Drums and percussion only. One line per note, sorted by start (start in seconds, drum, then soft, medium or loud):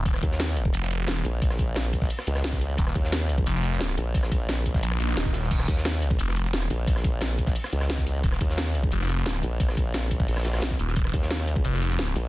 0.06 kick loud
0.06 closed hi-hat medium
0.14 cross-stick soft
0.14 snare soft
0.23 kick loud
0.23 closed hi-hat medium
0.23 shaker medium
0.32 snare medium
0.40 snare loud
0.40 closed hi-hat medium
0.48 snare soft
0.57 closed hi-hat medium
0.57 shaker medium
0.65 kick loud
0.73 closed hi-hat medium
0.82 snare soft
0.91 snare soft
0.91 closed hi-hat medium
0.91 shaker medium
0.99 snare soft
0.99 shaker soft
1.07 snare loud
1.07 closed hi-hat medium
1.16 cross-stick soft
1.16 shaker soft
1.24 closed hi-hat medium
1.24 shaker medium
1.42 kick loud
1.42 closed hi-hat medium
1.50 cross-stick soft
1.50 snare medium
1.59 kick loud
1.59 closed hi-hat medium
1.59 shaker medium
1.75 snare loud
1.75 closed hi-hat medium
1.93 kick medium
1.93 closed hi-hat medium
1.93 open hi-hat medium
1.93 shaker medium
2.02 kick loud
2.02 snare soft
2.10 closed hi-hat medium
2.10 open hi-hat medium
2.19 cross-stick medium
2.19 snare soft
2.27 closed hi-hat medium
2.27 shaker medium
2.36 cross-stick soft
2.36 snare medium
2.36 shaker soft
2.44 snare loud
2.44 closed hi-hat loud
2.44 closed hi-hat medium
2.53 kick medium
2.53 snare soft
2.53 shaker soft
2.61 closed hi-hat medium
2.61 shaker medium
2.78 kick loud
2.78 closed hi-hat loud
2.78 closed hi-hat medium
2.87 cross-stick soft
2.87 snare soft
2.95 kick loud
2.95 closed hi-hat medium
2.95 shaker medium
3.04 snare medium
3.12 snare loud
3.12 closed hi-hat medium
3.12 closed hi-hat loud
3.21 snare soft
3.29 closed hi-hat medium
3.29 shaker medium
3.38 kick loud
3.46 closed hi-hat medium
3.46 closed hi-hat loud
3.55 snare soft
3.63 snare soft
3.63 closed hi-hat medium
3.63 shaker medium
3.72 snare soft
3.72 shaker soft
3.80 snare loud
3.80 closed hi-hat loud
3.80 closed hi-hat medium
3.89 cross-stick soft
3.89 shaker soft
3.98 closed hi-hat medium
3.98 shaker medium
4.15 kick loud
4.15 closed hi-hat loud
4.15 closed hi-hat medium
4.23 cross-stick soft
4.23 snare medium
4.31 kick loud
4.31 closed hi-hat medium
4.31 shaker medium
4.49 snare loud
4.49 closed hi-hat loud
4.49 closed hi-hat medium
4.66 kick medium
4.66 closed hi-hat medium
4.66 open hi-hat medium
4.66 shaker medium
4.74 kick loud
4.74 snare soft
4.83 closed hi-hat loud
4.83 closed hi-hat medium
4.91 cross-stick medium
4.91 snare soft
5.00 snare medium
5.00 closed hi-hat medium
5.00 shaker medium
5.08 cross-stick soft
5.08 snare medium
5.08 shaker soft
5.17 snare loud
5.17 closed hi-hat medium
5.17 closed hi-hat loud
5.25 kick medium
5.25 snare soft
5.25 shaker soft
5.33 snare loud
5.33 closed hi-hat medium
5.33 shaker medium
5.43 snare soft
5.51 kick loud
5.51 closed hi-hat medium
5.51 closed hi-hat loud
5.51 crash medium
5.60 cross-stick soft
5.60 snare soft
5.68 kick loud
5.68 closed hi-hat medium
5.68 shaker medium
5.76 snare medium
5.85 snare loud
5.85 closed hi-hat medium
5.85 closed hi-hat loud
5.94 snare medium
6.02 closed hi-hat medium
6.02 shaker medium
6.11 kick loud
6.19 closed hi-hat loud
6.28 snare soft
6.36 snare soft
6.36 closed hi-hat medium
6.36 shaker medium
6.45 snare soft
6.45 shaker soft
6.53 snare loud
6.53 closed hi-hat loud
6.53 closed hi-hat medium
6.62 cross-stick medium
6.62 shaker soft
6.70 closed hi-hat medium
6.70 shaker medium
6.87 kick loud
6.87 closed hi-hat loud
6.87 closed hi-hat medium
6.96 cross-stick soft
6.96 snare medium
7.04 kick loud
7.04 closed hi-hat medium
7.04 shaker medium
7.21 snare loud
7.21 closed hi-hat loud
7.39 kick medium
7.39 closed hi-hat medium
7.39 open hi-hat medium
7.39 shaker medium
7.46 kick loud
7.46 snare soft
7.55 closed hi-hat medium
7.55 open hi-hat medium
7.64 cross-stick medium
7.64 snare soft
7.73 closed hi-hat medium
7.73 shaker medium
7.81 cross-stick medium
7.81 snare soft
7.81 shaker soft
7.90 snare loud
7.90 closed hi-hat loud
7.90 closed hi-hat medium
7.98 kick medium
7.98 snare soft
7.98 shaker soft
8.07 closed hi-hat medium
8.07 shaker medium
8.23 kick loud
8.23 closed hi-hat medium
8.32 cross-stick soft
8.32 snare soft
8.40 kick loud
8.40 closed hi-hat medium
8.40 shaker medium
8.49 snare medium
8.58 snare loud
8.58 closed hi-hat medium
8.66 snare medium
8.75 closed hi-hat medium
8.75 shaker medium
8.83 kick loud
8.91 closed hi-hat medium
9.01 snare medium
9.09 snare soft
9.09 closed hi-hat medium
9.09 shaker medium
9.17 snare soft
9.17 shaker soft
9.26 snare loud
9.26 closed hi-hat medium
9.26 closed hi-hat loud
9.35 cross-stick soft
9.35 shaker soft
9.43 closed hi-hat medium
9.43 shaker medium
9.60 kick loud
9.60 closed hi-hat medium
9.69 cross-stick soft
9.69 snare medium
9.77 kick loud
9.77 closed hi-hat medium
9.77 shaker medium
9.94 snare loud
9.94 closed hi-hat loud
9.94 closed hi-hat medium
10.11 kick medium
10.11 closed hi-hat medium
10.11 open hi-hat medium
10.11 shaker medium
10.20 kick loud
10.28 closed hi-hat medium
10.28 open hi-hat medium
10.37 cross-stick medium
10.37 snare soft
10.45 snare loud
10.45 closed hi-hat medium
10.45 shaker medium
10.54 cross-stick soft
10.54 snare medium
10.54 closed hi-hat medium
10.54 shaker soft
10.57 snare loud
10.57 closed hi-hat medium
10.62 snare loud
10.62 closed hi-hat medium
10.71 kick medium
10.71 snare soft
10.71 shaker soft
10.79 closed hi-hat medium
10.79 shaker medium
10.87 snare soft
10.96 kick loud
10.96 closed hi-hat loud
10.96 closed hi-hat medium
11.05 cross-stick soft
11.05 snare soft
11.13 kick loud
11.13 closed hi-hat medium
11.13 shaker medium
11.22 snare medium
11.31 snare loud
11.31 closed hi-hat medium
11.38 snare soft
11.48 closed hi-hat medium
11.48 shaker medium
11.56 kick loud
11.64 closed hi-hat medium
11.73 snare soft
11.82 snare soft
11.82 closed hi-hat medium
11.82 shaker medium
11.90 snare soft
11.90 shaker soft
11.99 snare loud
11.99 closed hi-hat loud
12.07 cross-stick soft
12.07 shaker soft
12.16 closed hi-hat medium
12.16 shaker medium